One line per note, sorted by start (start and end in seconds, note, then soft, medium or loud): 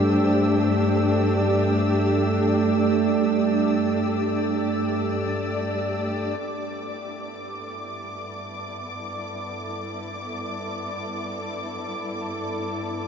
0.00 6.41 G2 medium
0.00 6.40 A3 medium
0.00 8.20 D4 medium
0.00 8.13 G4 medium
0.00 1.27 C5 medium
0.00 6.43 E6 medium
0.97 13.08 D5 medium
6.40 13.08 G2 medium
6.40 13.08 B3 medium
6.40 13.08 D6 medium
6.86 13.08 E4 medium
7.20 13.08 A4 medium